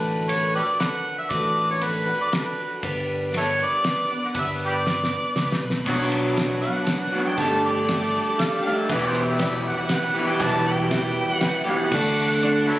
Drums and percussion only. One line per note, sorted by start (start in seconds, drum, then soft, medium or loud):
0.29 ride medium
0.80 snare medium
0.80 ride soft
1.30 kick loud
1.30 ride medium
1.81 ride medium
2.33 snare medium
2.33 ride medium
2.83 kick loud
2.83 ride medium
3.34 ride medium
3.84 snare medium
3.84 ride medium
4.35 kick loud
4.35 ride medium
4.87 snare soft
5.04 snare soft
5.36 snare medium
5.52 snare medium
5.70 snare medium
5.86 kick loud
5.86 crash loud
6.12 ride medium
6.37 snare medium
6.37 ride medium
6.87 snare medium
6.87 ride medium
7.38 kick loud
7.38 ride medium
7.89 snare medium
7.89 ride medium
8.39 snare medium
8.39 ride medium
8.90 kick loud
8.90 ride medium
9.15 ride medium
9.39 snare medium
9.39 ride medium
9.89 snare medium
9.89 ride medium
10.40 kick loud
10.40 ride medium
10.91 snare medium
10.91 ride medium
11.41 snare medium
11.41 ride medium
11.91 kick loud
11.91 crash loud
12.43 closed hi-hat medium